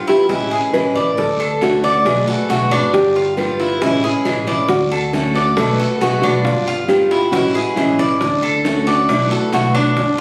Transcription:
Already playing: upright bass G1
0.07 steel-string acoustic guitar B3 F4, cuban tres E4, nylon-string guitar G4, high bongo, short guiro
0.29 upright bass A1, steel-string acoustic guitar E3 G#3 C#4 E4, cuban tres E4, nylon-string guitar G#4, high bongo, long guiro
0.51 steel-string acoustic guitar G#3 C#4 E4, cuban tres G#4, high bongo
0.73 upright bass A1, steel-string acoustic guitar E3 G#3 C#4 E4, nylon-string guitar B4, high bongo, short guiro, claves
0.95 upright bass A1, steel-string acoustic guitar G#3 C#4 E4, cuban tres D5, high bongo, short guiro
1.17 upright bass D2, nylon-string guitar A4, muted steel-string acoustic guitar stroke, high bongo, long guiro
1.40 cuban tres A4, claves
1.61 steel-string acoustic guitar D3 A3 C#4 F#4, nylon-string guitar F#4, high bongo, low bongo, short guiro
1.83 steel-string acoustic guitar A3 C#4 F#4, cuban tres D5, high bongo, short guiro
2.05 upright bass B1, steel-string acoustic guitar B2 D3 A3 B3 F#4, nylon-string guitar G#4, high bongo, long guiro, claves
2.28 steel-string acoustic guitar A3 B3 F#4, cuban tres A4, high bongo
2.49 upright bass B1, steel-string acoustic guitar B2 D3 A3 B3 F#4, cuban tres F#4, high bongo, short guiro
2.71 upright bass G#1, steel-string acoustic guitar A3 B3 F#4, cuban tres D4, high bongo, short guiro, claves
2.93 upright bass G1, nylon-string guitar G4, muted steel-string acoustic guitar stroke, high bongo, long guiro
3.16 cuban tres F4
3.37 steel-string acoustic guitar G3 B3 F4, nylon-string guitar B4, high bongo, low bongo, short guiro, claves
3.59 steel-string acoustic guitar B3 F4, cuban tres E4, high bongo, short guiro
3.81 upright bass A1, steel-string acoustic guitar E3 G#3 C#4 E4, cuban tres E4, nylon-string guitar G#4, high bongo, long guiro
4.04 steel-string acoustic guitar G#3 C#4 E4, cuban tres G#4, high bongo
4.25 upright bass A1, steel-string acoustic guitar E3 G#3 C#4 E4, high bongo, short guiro, claves
4.47 upright bass A1, steel-string acoustic guitar G#3 C#4 E4, cuban tres D5, high bongo, short guiro
4.69 upright bass D2, nylon-string guitar F#4, muted steel-string acoustic guitar stroke, high bongo, long guiro
4.92 cuban tres A4, claves
5.13 steel-string acoustic guitar D3 A3 C#4 F#4, high bongo, low bongo, short guiro
5.34 steel-string acoustic guitar A3 C#4 F#4, cuban tres D5, high bongo, short guiro
5.56 upright bass B1, steel-string acoustic guitar B2 D3 A3 B3 F#4, nylon-string guitar A4, high bongo, long guiro, claves
5.79 steel-string acoustic guitar A3 B3 F#4, cuban tres A4, high bongo
6.01 upright bass B1, steel-string acoustic guitar B2 D3 A3 B3 F#4, cuban tres F#4, nylon-string guitar G#4, high bongo, short guiro
6.22 upright bass B1, steel-string acoustic guitar A3 B3 F#4, cuban tres D4, nylon-string guitar F#4, short guiro, claves
6.45 upright bass G1, nylon-string guitar F4, muted steel-string acoustic guitar stroke, high bongo, long guiro
6.67 cuban tres F4
6.88 steel-string acoustic guitar G3 B3 F4, nylon-string guitar G4, high bongo, low bongo, short guiro, claves
7.11 steel-string acoustic guitar B3 F4, cuban tres E4, high bongo, short guiro
7.32 upright bass A1, steel-string acoustic guitar E3 G#3 C#4 E4, cuban tres E4, nylon-string guitar F#4, high bongo, long guiro
7.55 steel-string acoustic guitar G#3 C#4 E4, cuban tres G#4, high bongo
7.76 upright bass A1, steel-string acoustic guitar E3 G#3 C#4 E4, nylon-string guitar E4, high bongo, short guiro, claves
7.99 upright bass A1, steel-string acoustic guitar G#3 C#4 E4, cuban tres D5, high bongo, short guiro
8.20 upright bass D2, nylon-string guitar D4, muted steel-string acoustic guitar stroke, high bongo, long guiro
8.43 cuban tres A4, claves
8.65 steel-string acoustic guitar D3 A3 C#4 F#4, high bongo, low bongo, short guiro
8.87 steel-string acoustic guitar A3 C#4 F#4, cuban tres D5, high bongo, short guiro
9.09 upright bass B1, steel-string acoustic guitar B2 D3 A3 B3 F#4, nylon-string guitar E4, high bongo, long guiro, claves
9.31 steel-string acoustic guitar A3 B3 F#4, cuban tres A4, high bongo
9.52 upright bass B1, steel-string acoustic guitar B2 D3 A3 B3 F#4, cuban tres F#4, high bongo, short guiro
9.74 upright bass B1, steel-string acoustic guitar A3 B3 F#4, cuban tres D4, high bongo, short guiro, claves
9.96 upright bass G1, nylon-string guitar D4, muted steel-string acoustic guitar stroke, high bongo, long guiro

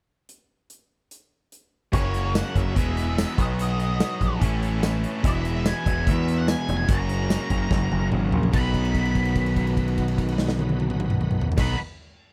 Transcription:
0.29 closed hi-hat
0.70 closed hi-hat
1.11 closed hi-hat
1.52 closed hi-hat
1.92 picked electric bass F#1, overdriven electric guitar F#2 C#3 F#3 A#3 C#4 F#4, tonewheel organ A#3 C#4 F#4 A#4, lead electric guitar C#5, kick, closed hi-hat
2.14 closed hi-hat
2.35 lead electric guitar F#5, snare, closed hi-hat, tambourine
2.55 picked electric bass F#1, lead electric guitar E5, kick, closed hi-hat
2.75 picked electric bass E1, overdriven electric guitar E2 B2 E3 G#3 B3 G#4, tonewheel organ B3 E4 G#4 B4, kick, closed hi-hat
2.97 closed hi-hat
3.18 snare, closed hi-hat, tambourine
3.37 picked electric bass B1, overdriven electric guitar B2 F#3 B3 D#4, tonewheel organ B3 D#4 F#4 B4, lead electric guitar D#5, kick, closed hi-hat
3.41 overdriven electric guitar F#4
3.59 lead electric guitar D#5, closed hi-hat
3.80 closed hi-hat
4.00 snare, closed hi-hat, tambourine
4.21 picked electric bass A#1, kick, closed hi-hat
4.40 picked electric bass A1, overdriven electric guitar A2 E3 A3 C#4, tonewheel organ C#4 E4 A4 C#5, kick, closed hi-hat
4.44 overdriven electric guitar E4
4.63 closed hi-hat
4.83 snare, closed hi-hat, tambourine
5.04 closed hi-hat
5.22 picked electric bass E1, overdriven electric guitar E2 B2 E3 G#3 B3 E4, tonewheel organ B3 E4 G#4 B4, kick, closed hi-hat
5.27 lead electric guitar E5
5.45 closed hi-hat
5.66 lead electric guitar G#5, snare, closed hi-hat, tambourine
5.86 picked electric bass E1, kick, closed hi-hat
6.07 picked electric bass E2, lead electric guitar E5, kick, closed hi-hat
6.28 closed hi-hat
6.38 lead electric guitar F#5
6.48 lead electric guitar G#5, snare, closed hi-hat, tambourine
6.69 picked electric bass F1, closed hi-hat
6.77 lead electric guitar G#5
6.87 picked electric bass F#1, overdriven electric guitar F#2 C#3 F#3 A#3 C#4, tonewheel organ A#3 C#4 F#4 A#4, lead electric guitar A#5, kick, closed hi-hat
6.91 overdriven electric guitar F#4
7.09 closed hi-hat
7.30 snare, closed hi-hat, tambourine
7.50 picked electric bass F#1, kick, closed hi-hat
7.71 picked electric bass F#1, kick, snare
7.92 picked electric bass F#1, high tom
8.01 high tom
8.12 picked electric bass G#1, mid tom
8.32 picked electric bass A#1, floor tom
8.43 floor tom
8.52 picked electric bass B1, overdriven electric guitar B2 D#3 F#3 B3 D#4 B4, tonewheel organ B3 D#4 F#4 B4, lead electric guitar B5, kick, crash
8.74 kick, crash
8.85 crash
8.95 kick, crash
9.05 crash
9.15 kick, crash
9.25 crash
9.36 kick, crash
9.46 crash
9.56 kick, crash
9.67 crash
9.77 kick, crash
9.88 crash
9.98 kick, crash
10.08 crash
10.18 kick, crash
10.28 crash
10.38 snare
10.48 snare
10.59 high tom
10.69 high tom
10.80 high tom
10.90 mid tom
11.00 mid tom
11.10 mid tom
11.21 mid tom
11.31 mid tom
11.41 floor tom
11.52 floor tom
11.57 picked electric bass B1, overdriven electric guitar B2 D#3 F#3 B3 D#4, tonewheel organ B3 D#4 F#4 B4, lead electric guitar B5, kick, snare, crash
11.61 overdriven electric guitar B4

